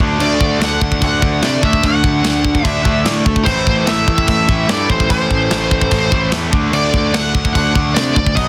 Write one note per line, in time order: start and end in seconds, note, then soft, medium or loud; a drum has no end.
0.00 0.17 D2 loud
0.00 1.00 D3 loud
0.00 1.03 A3 medium
0.00 1.03 D4 medium
0.20 0.37 D2 loud
0.20 0.63 D5 loud
0.20 crash medium
0.40 0.58 D2 loud
0.40 kick medium
0.59 0.78 D2 loud
0.59 snare loud
0.59 crash medium
0.64 1.03 F#5 loud
0.81 0.99 D2 medium
0.81 kick medium
0.92 kick medium
1.01 1.19 D2 medium
1.01 1.21 D3 medium
1.01 1.22 A3 medium
1.01 1.19 D4 medium
1.01 1.45 F#5 loud
1.01 kick loud
1.01 crash medium
1.21 1.40 D2 medium
1.21 1.60 D3 medium
1.21 1.63 A3 medium
1.21 1.61 D4 medium
1.21 kick medium
1.42 1.59 C3 loud
1.42 1.65 D5 medium
1.42 snare loud
1.42 crash medium
1.61 1.81 D2 loud
1.61 2.63 D3 medium
1.61 2.65 A3 loud
1.61 2.65 D4 loud
1.61 1.85 E5 medium
1.61 kick medium
1.73 kick medium
1.83 2.01 D2 loud
1.83 2.66 F#5 loud
1.83 kick loud
1.83 crash medium
2.04 2.21 D2 medium
2.04 kick medium
2.23 2.58 D2 medium
2.23 snare loud
2.23 crash medium
2.45 kick medium
2.55 kick medium
2.64 2.82 D2 medium
2.64 2.84 D3 medium
2.64 2.85 A3 medium
2.64 2.82 D4 medium
2.64 3.03 E5 loud
2.64 kick loud
2.64 crash medium
2.83 3.03 D2 medium
2.83 3.26 D3 medium
2.83 3.47 A3 medium
2.83 3.24 D4 medium
2.83 kick medium
3.05 3.23 A2 loud
3.05 snare loud
3.05 crash medium
3.26 3.43 D2 medium
3.26 kick loud
3.36 kick medium
3.44 3.64 A1 loud
3.44 4.47 A2 loud
3.44 4.48 E3 loud
3.44 3.88 C5 loud
3.44 kick loud
3.44 crash medium
3.49 4.47 A3 medium
3.67 3.84 A1 medium
3.67 kick medium
3.86 4.05 A1 medium
3.86 4.27 E5 loud
3.86 snare loud
3.86 crash medium
4.07 4.25 A1 medium
4.07 kick medium
4.18 kick medium
4.28 4.45 A1 medium
4.28 4.70 E5 loud
4.28 kick loud
4.28 crash medium
4.48 4.66 A1 medium
4.48 4.67 A2 medium
4.48 4.68 E3 medium
4.48 4.71 A3 loud
4.48 kick medium
4.68 4.86 G2 loud
4.68 5.07 A2 medium
4.68 5.09 E3 medium
4.68 5.11 A3 medium
4.68 4.90 D5 loud
4.68 snare loud
4.68 crash medium
4.90 5.07 A1 loud
4.90 5.09 C5 medium
4.90 kick medium
5.00 kick medium
5.08 5.27 A1 loud
5.08 6.10 A2 medium
5.08 6.11 E3 loud
5.08 6.10 A3 loud
5.08 6.29 C5 medium
5.08 kick loud
5.08 crash medium
5.31 5.48 A1 medium
5.31 kick medium
5.51 5.85 A1 medium
5.51 snare loud
5.51 crash medium
5.71 kick medium
5.81 kick medium
5.91 6.09 A1 loud
5.91 kick loud
5.91 crash medium
6.11 6.29 A1 medium
6.11 6.29 A2 medium
6.11 6.31 E3 medium
6.11 6.31 A3 medium
6.11 kick medium
6.30 6.50 E2 loud
6.30 6.51 A2 medium
6.30 6.52 E3 medium
6.30 6.52 A3 medium
6.30 snare loud
6.30 crash medium
6.51 6.70 D2 loud
6.51 7.53 D3 loud
6.51 7.54 A3 medium
6.51 7.54 D4 loud
6.51 kick loud
6.72 6.90 D2 loud
6.72 7.16 D5 loud
6.72 crash medium
6.94 7.11 D2 loud
6.94 kick medium
7.13 7.31 D2 medium
7.13 7.52 F#5 loud
7.13 snare loud
7.13 crash medium
7.34 7.52 D2 medium
7.34 kick medium
7.45 kick loud
7.53 7.72 D2 medium
7.53 7.74 D3 medium
7.53 7.75 A3 medium
7.53 7.92 F#5 loud
7.53 kick loud
7.53 crash medium
7.58 7.74 D4 medium
7.75 7.93 D2 medium
7.75 8.16 D3 medium
7.75 8.16 A3 medium
7.75 8.15 D4 medium
7.75 kick medium
7.94 8.13 C3 loud
7.94 8.13 D5 medium
7.94 snare loud
7.94 crash medium
8.15 8.33 D2 loud
8.15 8.34 D5 medium
8.15 kick medium
8.26 kick medium
8.35 8.48 B1 loud
8.35 8.48 B2 medium
8.35 8.48 F#3 loud
8.35 8.48 B3 loud
8.35 8.48 D#5 medium
8.35 kick loud
8.35 crash medium